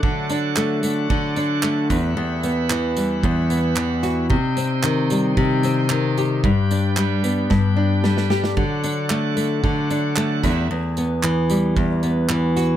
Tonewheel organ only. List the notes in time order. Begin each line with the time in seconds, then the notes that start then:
0.02 F#3 D4 A4 F#5
1.89 G3 E4 B4
4.30 G3 D#4 C5 G5
6.44 G3 D4 B4
8.57 F#3 A4 F#5
10.43 G3 E4 B4